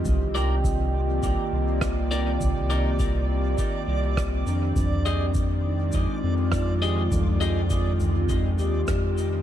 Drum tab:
SH |xxx-x-xx|xxx-x-xx|xxx-x-xx|xxxxxxxx|
SD |------r-|------r-|------r-|------r-|
T2 |o-------|o-------|o-------|o--o----|
BD |o-o-o-o-|o-o-o-o-|o-o-o-o-|o-o-o-o-|